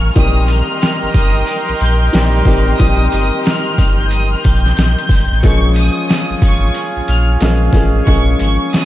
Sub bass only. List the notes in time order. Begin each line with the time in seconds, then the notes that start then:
Already playing: A1
0.16 A#1
1.03 G1
1.15 G1
1.69 A#1
1.81 A#1
2.14 A#1
2.46 A1
2.80 A#1
3.13 G1
3.78 G1
4.45 A#1
4.78 A#1
5.09 G#1
5.32 A1
5.44 A#1
6.30 G#1
6.42 G#1
6.96 A#1
7.09 A#1
7.41 A#1
7.73 A1
8.07 A#1
8.41 G#1